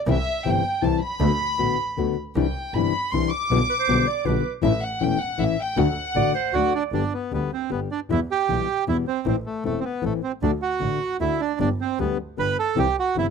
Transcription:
0.07 C2 C3 E3 G3 C4 E4 E5
0.45 G1 C3 E3 G3 C4 E4 G5
0.82 C2 C3 E3 G3 C4 E4 A5
1.03 B5
1.20 D2 D3 A3 B3 F#4
1.58 A1 D3 A3 B3 F#4
1.97 D2 D3 A3 B3 F#4
2.36 C2 C3 E3 G3 D4 E4 G5
2.74 G1 C3 E3 G3 D4 E4 B5
3.13 C2 C3 E3 G3 D4 E4 C6
3.31 D6
3.51 B1 B2 D3 G3 B3 F4
3.70 B4
3.79 C5
3.88 B1 B2 D3 G3 B3 F4
4.07 D5
4.25 B1 B2 D3 G3 B3 F4 B4
4.62 A1 E3 A3 C#4 E4 E5
4.83 F#5
5.01 E1 E3 A3 C#4 E4 G5
5.20 F#5
5.38 A1 E3 A3 C#4 E4 E5
5.60 G5
5.76 D2 D3 A3 D4 F#4 F#5
6.15 A1 D3 A3 D4 F#4 D5
6.34 C5
6.53 D2 D3 A3 D4 F#4 D5
6.75 D4
6.92 G1 D3 G3 B3 D4 G4
7.14 B3
7.31 D2 D3 G3 B3 G4
7.53 C4
7.70 G1 D3 G3 B3 G4
7.91 D4
8.09 E2 B2 E3 G3 B3 E4
8.31 G4
8.48 B1 B2 E3 G3 B3 E4
8.87 E2 B2 E3 G3 B3 E4
9.07 C4
9.25 A1 E3 A3 C4 E4
9.46 A3
9.64 E1 E3 A3 C4 E4
9.80 C4
9.85 B3
10.02 A1 E3 A3 C4 E4
10.23 C4
10.42 D2 D3 A3 D4 F#4
10.62 F#4
10.80 A1 D3 A3 D4 F#4
11.20 D2 D3 A3 D4 E4 F#4
11.41 D4
11.60 G1 D3 G3 B3 D4 G4
11.81 C4
11.99 D2 D3 G3 B3 D4 G4
12.37 G1 D3 G3 B3 D4 G4 B4
12.59 A4
12.75 C2 C3 E3 G3 C4 E4 G4
12.99 F#4
13.16 G1 C3 E3 G3 C4 E4

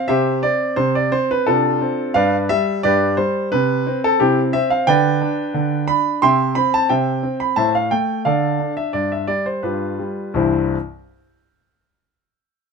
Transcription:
0.08 C3 G4 C5 E5
0.43 C4 D5
0.76 C3 C5
0.95 D5
1.12 C4 C5
1.31 B4
1.46 C3 D4 F4 A4
1.81 C4
2.14 G2 B4 D5 F5
2.49 G3 E5
2.83 G2 G4 B4 D5
3.17 G3 C5
3.52 C3 B4
3.87 C4
4.04 A4
4.20 C3 C4 E4 G4
4.53 C4 E5
4.70 F5
4.87 D3 B4 D5 G5
5.22 D4
5.54 D3
5.88 D4 B5
6.22 C3 E5 G5 C6
6.55 C4 B5
6.74 A5
6.89 C3 C5 E5 G5
7.23 C4
7.40 B5
7.56 A2 C5 E5 A5
7.75 F5
7.91 A3 G5
8.25 D3 A4 D5 F5
8.60 D4
8.77 E5
8.93 G2 D5
9.12 E5
9.27 G3 D5
9.46 C5
9.63 G2 F4 G4 B4
9.99 G3
10.34 C2 G2 E3 G3 C4 E4 C5

